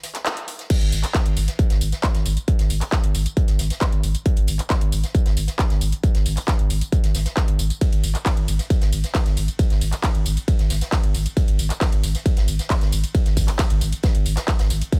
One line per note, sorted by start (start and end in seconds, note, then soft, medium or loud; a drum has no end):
0.03 snare medium
0.03 closed hi-hat medium
0.03 open hi-hat loud
0.14 snare medium
0.14 clap soft
0.14 closed hi-hat medium
0.25 snare loud
0.25 clap loud
0.25 closed hi-hat medium
0.37 closed hi-hat medium
0.48 closed hi-hat medium
0.48 open hi-hat loud
0.59 snare soft
0.59 closed hi-hat medium
0.70 kick loud
0.70 closed hi-hat medium
0.70 crash loud
0.70 tambourine soft
0.81 0.92 G#1 medium
0.81 closed hi-hat soft
0.81 closed hi-hat medium
0.92 1.03 G#1 loud
0.92 closed hi-hat medium
0.92 open hi-hat loud
0.92 tambourine medium
1.04 clap soft
1.04 closed hi-hat medium
1.04 tambourine soft
1.14 kick loud
1.14 snare loud
1.14 clap loud
1.14 closed hi-hat loud
1.14 closed hi-hat medium
1.14 tambourine soft
1.26 1.36 G#1 medium
1.26 closed hi-hat medium
1.37 1.48 G#1 medium
1.37 closed hi-hat medium
1.37 open hi-hat loud
1.37 tambourine medium
1.48 snare medium
1.48 closed hi-hat medium
1.48 tambourine soft
1.59 kick loud
1.59 closed hi-hat medium
1.59 tambourine soft
1.70 1.81 G#1 medium
1.70 snare medium
1.70 closed hi-hat medium
1.81 1.92 G#1 loud
1.81 closed hi-hat medium
1.81 open hi-hat loud
1.81 tambourine medium
1.92 snare medium
1.92 closed hi-hat medium
1.92 tambourine soft
2.03 kick loud
2.03 snare loud
2.03 clap loud
2.03 closed hi-hat loud
2.03 closed hi-hat medium
2.03 tambourine soft
2.14 2.25 G#1 medium
2.14 snare medium
2.14 closed hi-hat medium
2.26 2.37 G#1 loud
2.26 closed hi-hat medium
2.26 open hi-hat loud
2.26 tambourine medium
2.37 closed hi-hat medium
2.37 tambourine soft
2.48 kick loud
2.48 closed hi-hat medium
2.48 tambourine soft
2.59 2.69 G#1 medium
2.59 snare soft
2.59 closed hi-hat medium
2.70 2.81 G#1 loud
2.70 open hi-hat loud
2.70 open hi-hat medium
2.70 tambourine medium
2.81 clap soft
2.81 closed hi-hat medium
2.81 tambourine soft
2.92 kick loud
2.92 snare loud
2.92 clap loud
2.92 closed hi-hat medium
2.92 tambourine soft
3.04 3.14 G#1 medium
3.04 closed hi-hat medium
3.14 3.26 G#1 loud
3.14 closed hi-hat medium
3.14 open hi-hat loud
3.14 tambourine medium
3.26 closed hi-hat medium
3.26 tambourine soft
3.37 kick loud
3.37 closed hi-hat medium
3.37 tambourine soft
3.47 3.58 G#1 medium
3.47 snare soft
3.47 closed hi-hat medium
3.59 3.70 G#1 loud
3.59 snare soft
3.59 closed hi-hat medium
3.59 open hi-hat loud
3.59 tambourine medium
3.70 snare medium
3.70 closed hi-hat medium
3.70 tambourine soft
3.81 kick loud
3.81 snare loud
3.81 clap loud
3.81 closed hi-hat medium
3.81 tambourine soft
3.92 4.03 G#1 medium
3.92 closed hi-hat medium
4.03 4.14 G#1 loud
4.03 closed hi-hat medium
4.03 open hi-hat loud
4.03 tambourine medium
4.15 closed hi-hat medium
4.15 tambourine soft
4.26 kick loud
4.26 closed hi-hat medium
4.26 tambourine soft
4.36 4.47 G#1 medium
4.36 closed hi-hat soft
4.36 closed hi-hat medium
4.47 4.59 G#1 loud
4.47 closed hi-hat medium
4.47 open hi-hat loud
4.47 tambourine medium
4.59 clap soft
4.59 closed hi-hat medium
4.59 tambourine soft
4.70 kick loud
4.70 snare loud
4.70 clap loud
4.70 closed hi-hat medium
4.70 closed hi-hat loud
4.70 tambourine soft
4.81 4.92 G#1 medium
4.81 closed hi-hat medium
4.92 5.03 G#1 medium
4.92 closed hi-hat medium
4.92 open hi-hat loud
4.92 tambourine medium
5.04 snare medium
5.04 closed hi-hat medium
5.04 tambourine soft
5.14 kick loud
5.14 closed hi-hat medium
5.14 tambourine soft
5.26 5.36 G#1 medium
5.26 snare medium
5.26 closed hi-hat medium
5.37 5.48 G#1 loud
5.37 closed hi-hat medium
5.37 open hi-hat loud
5.37 tambourine medium
5.48 snare medium
5.48 closed hi-hat medium
5.48 tambourine soft
5.59 kick loud
5.59 snare loud
5.59 clap loud
5.59 closed hi-hat medium
5.59 tambourine soft
5.70 5.81 G#1 medium
5.70 snare medium
5.70 closed hi-hat medium
5.81 5.92 G#1 loud
5.81 closed hi-hat medium
5.81 open hi-hat loud
5.81 tambourine medium
5.92 closed hi-hat medium
5.92 tambourine soft
6.03 kick loud
6.03 closed hi-hat medium
6.03 tambourine soft
6.15 6.25 G#1 medium
6.15 snare medium
6.15 closed hi-hat medium
6.26 6.37 G#1 loud
6.26 open hi-hat loud
6.26 open hi-hat medium
6.26 tambourine medium
6.37 clap soft
6.37 closed hi-hat medium
6.37 tambourine soft
6.48 kick loud
6.48 snare loud
6.48 clap loud
6.48 closed hi-hat medium
6.48 tambourine soft
6.59 6.70 G#1 medium
6.59 closed hi-hat medium
6.70 6.81 G#1 medium
6.70 closed hi-hat medium
6.70 open hi-hat loud
6.70 tambourine medium
6.81 closed hi-hat medium
6.81 tambourine soft
6.92 kick loud
6.92 closed hi-hat medium
6.92 tambourine soft
7.04 7.14 G#1 medium
7.04 snare soft
7.04 closed hi-hat medium
7.15 7.26 G#1 loud
7.15 snare soft
7.15 closed hi-hat medium
7.15 open hi-hat loud
7.15 tambourine medium
7.26 snare medium
7.26 closed hi-hat medium
7.26 tambourine soft
7.36 kick loud
7.36 snare loud
7.36 clap loud
7.36 closed hi-hat medium
7.36 tambourine soft
7.48 7.58 G#1 medium
7.48 closed hi-hat medium
7.59 7.70 G#1 loud
7.59 closed hi-hat medium
7.59 open hi-hat loud
7.59 tambourine medium
7.70 closed hi-hat medium
7.70 tambourine soft
7.81 kick loud
7.81 closed hi-hat medium
7.81 ride medium
7.81 tambourine soft
7.92 8.03 G#1 medium
7.92 closed hi-hat medium
7.92 closed hi-hat soft
8.03 8.14 G#1 loud
8.03 closed hi-hat medium
8.03 open hi-hat loud
8.03 tambourine medium
8.15 clap soft
8.15 closed hi-hat medium
8.15 tambourine soft
8.26 kick loud
8.26 snare loud
8.26 clap loud
8.26 closed hi-hat medium
8.26 ride medium
8.26 tambourine soft
8.37 8.47 G#1 medium
8.37 closed hi-hat medium
8.48 8.59 G#1 loud
8.48 closed hi-hat medium
8.48 open hi-hat loud
8.48 tambourine medium
8.59 snare soft
8.59 closed hi-hat medium
8.59 tambourine soft
8.70 kick loud
8.70 closed hi-hat medium
8.70 ride medium
8.70 tambourine soft
8.81 8.92 G#1 medium
8.81 snare medium
8.81 closed hi-hat medium
8.93 9.03 G#1 loud
8.93 closed hi-hat medium
8.93 open hi-hat loud
8.93 tambourine medium
9.04 snare medium
9.04 closed hi-hat medium
9.04 tambourine soft
9.14 kick loud
9.14 snare loud
9.14 clap loud
9.14 closed hi-hat loud
9.14 closed hi-hat medium
9.14 ride medium
9.14 tambourine soft
9.26 9.36 G#1 medium
9.26 snare medium
9.26 closed hi-hat medium
9.37 9.48 G#1 loud
9.37 closed hi-hat medium
9.37 open hi-hat loud
9.37 tambourine medium
9.48 closed hi-hat medium
9.48 tambourine soft
9.59 kick loud
9.59 closed hi-hat medium
9.59 ride medium
9.59 tambourine soft
9.70 9.81 G#1 medium
9.70 snare soft
9.70 closed hi-hat medium
9.81 9.92 G#1 loud
9.81 open hi-hat medium
9.81 open hi-hat loud
9.81 tambourine medium
9.93 clap soft
9.93 closed hi-hat medium
9.93 tambourine soft
10.03 kick loud
10.03 snare loud
10.03 clap loud
10.03 closed hi-hat medium
10.03 ride medium
10.03 tambourine soft
10.15 10.25 G#1 medium
10.15 closed hi-hat medium
10.26 10.37 G#1 loud
10.26 closed hi-hat medium
10.26 open hi-hat loud
10.26 tambourine medium
10.37 closed hi-hat medium
10.37 tambourine soft
10.48 kick loud
10.48 closed hi-hat medium
10.48 ride medium
10.48 tambourine soft
10.59 10.70 G#1 medium
10.59 snare soft
10.59 closed hi-hat medium
10.70 10.81 G#1 loud
10.70 snare soft
10.70 closed hi-hat medium
10.70 open hi-hat loud
10.70 tambourine medium
10.81 snare medium
10.81 closed hi-hat medium
10.81 tambourine soft
10.92 kick loud
10.92 snare loud
10.92 clap loud
10.92 closed hi-hat medium
10.92 closed hi-hat loud
10.92 ride medium
10.92 tambourine soft
11.04 11.14 G#1 medium
11.04 closed hi-hat medium
11.14 11.26 G#1 loud
11.14 closed hi-hat medium
11.14 open hi-hat loud
11.14 tambourine medium
11.26 closed hi-hat medium
11.26 tambourine soft
11.37 kick loud
11.37 closed hi-hat medium
11.37 ride medium
11.37 tambourine soft
11.48 11.58 G#1 medium
11.48 closed hi-hat soft
11.48 closed hi-hat medium
11.59 11.70 G#1 loud
11.59 closed hi-hat medium
11.59 open hi-hat loud
11.59 tambourine medium
11.70 clap soft
11.70 closed hi-hat medium
11.70 tambourine soft
11.81 kick loud
11.81 snare loud
11.81 clap loud
11.81 closed hi-hat medium
11.81 ride medium
11.92 12.03 G#1 medium
11.92 closed hi-hat medium
12.03 12.14 G#1 loud
12.03 closed hi-hat medium
12.03 open hi-hat loud
12.03 tambourine medium
12.15 snare soft
12.15 closed hi-hat medium
12.15 tambourine soft
12.25 kick loud
12.25 closed hi-hat medium
12.25 ride medium
12.25 tambourine soft
12.37 12.47 G#1 medium
12.37 snare medium
12.37 closed hi-hat medium
12.48 12.59 G#1 loud
12.48 closed hi-hat medium
12.48 open hi-hat loud
12.48 tambourine medium
12.59 snare medium
12.59 closed hi-hat medium
12.59 tambourine soft
12.70 kick loud
12.70 snare loud
12.70 clap loud
12.70 closed hi-hat medium
12.70 ride medium
12.70 tambourine soft
12.81 12.92 G#1 medium
12.81 snare medium
12.81 closed hi-hat medium
12.92 13.03 G#1 loud
12.92 closed hi-hat medium
12.92 open hi-hat loud
12.92 tambourine medium
13.04 closed hi-hat medium
13.04 tambourine soft
13.15 kick loud
13.15 closed hi-hat medium
13.15 ride medium
13.15 tambourine soft
13.26 13.36 G#1 medium
13.26 snare soft
13.26 closed hi-hat medium
13.37 13.48 G#1 loud
13.37 kick medium
13.37 open hi-hat medium
13.37 open hi-hat loud
13.37 tambourine medium
13.48 clap soft
13.48 closed hi-hat medium
13.48 tambourine soft
13.58 kick loud
13.58 snare loud
13.58 clap loud
13.58 closed hi-hat medium
13.58 ride medium
13.58 tambourine soft
13.70 13.81 G#1 medium
13.70 closed hi-hat medium
13.81 13.92 G#1 medium
13.81 closed hi-hat medium
13.81 open hi-hat loud
13.81 tambourine medium
13.92 closed hi-hat medium
13.92 tambourine soft
14.03 kick loud
14.03 snare loud
14.03 closed hi-hat medium
14.03 ride medium
14.03 tambourine soft
14.15 14.25 G#1 medium
14.15 closed hi-hat medium
14.26 14.37 G#1 loud
14.26 closed hi-hat medium
14.26 open hi-hat loud
14.26 tambourine medium
14.37 snare loud
14.37 clap soft
14.37 closed hi-hat medium
14.37 tambourine soft
14.48 kick loud
14.48 snare loud
14.48 clap loud
14.48 closed hi-hat medium
14.48 ride medium
14.48 tambourine soft
14.59 14.70 G#1 medium
14.59 snare loud
14.59 closed hi-hat medium
14.70 14.81 G#1 loud
14.70 closed hi-hat medium
14.70 open hi-hat loud
14.70 tambourine medium
14.81 closed hi-hat medium
14.81 tambourine soft
14.92 kick loud
14.92 closed hi-hat medium
14.92 ride medium
14.92 tambourine soft